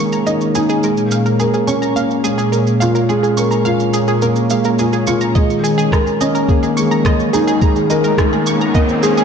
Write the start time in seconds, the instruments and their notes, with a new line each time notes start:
Already playing: analog synth pad D#3 A#3 C#4 G#4, felt piano A#3 D#4 A#4
0.00 felt piano G#3
0.12 synth arpeggio sound A#5, shaker
0.27 felt piano D#4, synth arpeggio sound D#5, shaker
0.41 shaker
0.55 felt piano D#4, synth arpeggio sound G#4, shaker
0.69 synth arpeggio sound G#4, shaker
0.83 analog synth pad A#2, felt piano G#3, synth arpeggio sound A#4, shaker
0.97 shaker
1.11 synth arpeggio sound F5, shaker
1.26 synth arpeggio sound A#4, shaker
1.40 synth arpeggio sound G#4, felt piano A#4, shaker
1.54 synth arpeggio sound G#4, shaker
1.67 felt piano C#4, synth arpeggio sound C#6, shaker
1.82 synth arpeggio sound A#5, shaker
1.96 felt piano A#3, synth arpeggio sound F5, shaker
2.11 shaker
2.24 felt piano G#3, synth arpeggio sound G#4, shaker
2.38 synth arpeggio sound G#4, shaker
2.52 synth arpeggio sound A#4, shaker
2.67 shaker
2.80 felt piano F4, synth arpeggio sound F5, shaker
2.95 synth arpeggio sound A#4, shaker
3.09 felt piano G#3, synth arpeggio sound G#4, shaker
3.23 synth arpeggio sound G#4, shaker
3.37 felt piano A#4, synth arpeggio sound C#6, shaker
3.51 synth arpeggio sound A#5, shaker
3.65 felt piano F4, synth arpeggio sound F5, shaker
3.80 shaker
3.94 synth arpeggio sound G#4, shaker
4.08 synth arpeggio sound G#4, shaker
4.22 felt piano A#3, synth arpeggio sound A#4, shaker
4.36 shaker
4.50 felt piano G#3, synth arpeggio sound F5, shaker
4.64 synth arpeggio sound A#4, shaker
4.79 felt piano F4, synth arpeggio sound G#4, shaker
4.93 synth arpeggio sound G#4, shaker
5.07 felt piano F4, synth arpeggio sound C#6, shaker
5.21 synth arpeggio sound A#5, shaker
5.35 analog synth pad D#3, felt piano G#3, synth arpeggio sound D#5, kick, riser, shaker
5.50 analog synth pad C#4, shaker
5.64 synth arpeggio sound G#4, shaker
5.78 synth arpeggio sound G#4, shaker
5.92 felt piano A#4, synth arpeggio sound A#5, kick, cross-stick, shaker
6.02 analog synth pad A#3
6.07 shaker
6.21 felt piano C#4, analog synth pad G#4, synth arpeggio sound D#5, shaker
6.35 synth arpeggio sound A#4, shaker
6.49 felt piano A#3, synth arpeggio sound G#4, kick, shaker
6.63 synth arpeggio sound G#4, shaker
6.77 felt piano G#3, synth arpeggio sound C#6, shaker
6.91 synth arpeggio sound A#5, shaker
7.05 synth arpeggio sound D#5, kick, cross-stick, shaker
7.20 shaker
7.33 felt piano D#4, synth arpeggio sound G#4, shaker
7.48 synth arpeggio sound G#4, shaker
7.62 felt piano G#3, synth arpeggio sound A#5, kick, shaker
7.76 shaker
7.90 felt piano A#4, synth arpeggio sound D#5, shaker
8.04 synth arpeggio sound A#4, shaker
8.18 felt piano D#4, synth arpeggio sound G#4, kick, cross-stick, shaker
8.33 synth arpeggio sound G#4, shaker
8.46 synth arpeggio sound C#6, shaker
8.61 synth arpeggio sound A#5, shaker
8.75 felt piano A#3, synth arpeggio sound D#5, kick, shaker
8.89 shaker
9.03 felt piano G#3, synth arpeggio sound G#4, shaker
9.17 synth arpeggio sound G#4, shaker